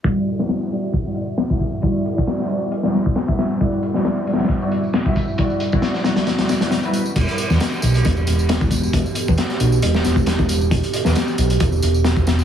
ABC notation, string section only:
X:1
M:4/4
L:1/16
Q:"Swing 16ths" 1/4=135
K:Em
V:1 name="String section"
[G,EFd] z2 [G,EFd] z2 [G,EFd] z2 [G,EFd] z3 [G,EFe] z2 | [G,EFd] z2 [G,EFd] z2 [G,EFd] z2 [G,EFd] z3 [G,EFe] z2 | [G,EFd] z2 [G,EFd] z2 [G,EFd] z2 [G,EFd] z3 [G,EFe] z2 | [G,EFd] z2 [G,EFd] z2 [G,EFd] z2 [G,EFd] z [G,EFd]2 [G,EFB] z2 |
z16 | z16 | z16 |]